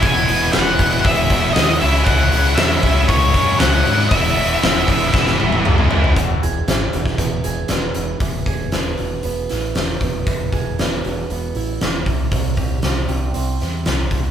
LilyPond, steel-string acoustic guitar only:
\new Staff \with { instrumentName = "Steel-string acoustic guitar" } { \time 4/4 \key e \major \tempo 4 = 117 r1 | r1 | r1 | e8 gis'8 e'8 e8 b8 gis'8 b8 e8 |
e8 gis'8 b8 fis8 b8 e'8 fis8 b8 | e8 gis'8 b8 fis8 b8 e'8 fis8 c8 | c8 g'8 c'8 g8 c'8 e'8 g8 c'8 | }